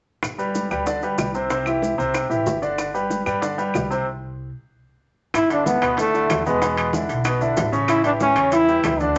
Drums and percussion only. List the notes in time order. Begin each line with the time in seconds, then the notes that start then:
0.23 high bongo, claves, maracas
0.39 maracas
0.55 high bongo, maracas
0.71 high bongo, claves, maracas
0.86 high bongo, maracas
1.02 high bongo, maracas
1.18 high bongo, low bongo, claves, maracas
1.34 high bongo, maracas
1.50 high bongo, maracas
1.66 claves, maracas
1.82 high bongo, maracas
1.99 high bongo, maracas
2.14 high bongo, claves, maracas
2.30 high bongo, maracas
2.46 high bongo, low bongo, maracas
2.63 high bongo, maracas
2.78 high bongo, claves, maracas
2.95 maracas
3.10 high bongo, maracas
3.26 high bongo, claves, maracas
3.42 high bongo, maracas
3.58 high bongo, maracas
3.74 high bongo, low bongo, claves, maracas
3.91 high bongo, maracas
5.34 high bongo, high conga, high timbale, claves, maracas
5.50 high conga, high timbale, maracas
5.66 high bongo, high conga, maracas
5.82 high bongo, high conga, high timbale, claves, maracas
5.97 high bongo, high conga, high timbale, maracas
6.14 high bongo, high conga, maracas
6.30 high bongo, low bongo, high conga, high timbale, claves, maracas
6.46 high bongo, high conga, maracas
6.61 high bongo, high conga, high timbale, maracas
6.77 high conga, high timbale, claves, maracas
6.93 high bongo, high conga, maracas
7.09 high bongo, high conga, high timbale, maracas
7.24 high bongo, high conga, high timbale, claves, maracas
7.41 high bongo, high conga, maracas
7.57 high bongo, low bongo, high conga, high timbale, low timbale, maracas
7.73 high bongo, high conga, maracas
7.88 high bongo, high conga, high timbale, claves, maracas
8.04 high conga, high timbale, maracas
8.20 high bongo, high conga, maracas
8.36 high bongo, high conga, high timbale, claves, maracas
8.52 high bongo, high conga, high timbale, maracas
8.68 high bongo, high conga, maracas
8.84 high bongo, low bongo, high conga, high timbale, low timbale, claves, maracas
9.00 high bongo, high conga, maracas